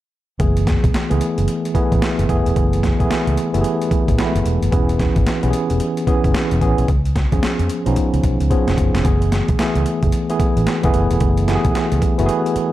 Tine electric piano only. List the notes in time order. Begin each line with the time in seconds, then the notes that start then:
0.39 E3 A3 B3 G#4
1.10 E3 A3 B3 G#4
1.74 E3 A3 B3 G#4
2.28 E3 A3 B3 G#4
2.99 E3 A3 B3 G#4
3.53 E3 A3 B3 G4
3.61 G#4
4.18 E3 G#3 B3 E4
4.25 A3
4.72 E3 B3 C#4 G#4
5.43 E3 B3 C#4 G4
5.50 G#4
6.07 E3 B3 C#4 G#4
6.61 E3 B3 C#4 G#4
7.32 F3 B3 C#4 G#4
7.86 F3 B3 C#4 D#4
8.50 F3 B3 C#4 G#4
9.04 E3 A3 B3 G#4
9.59 E3 A3 B3 G#4
10.29 E3 A3 B3 G#4
10.84 E3 A3 B3 G#4
11.48 E3 A3 B3 G4
11.55 G#4
12.18 E3 A3 B3 F#4
12.26 G#4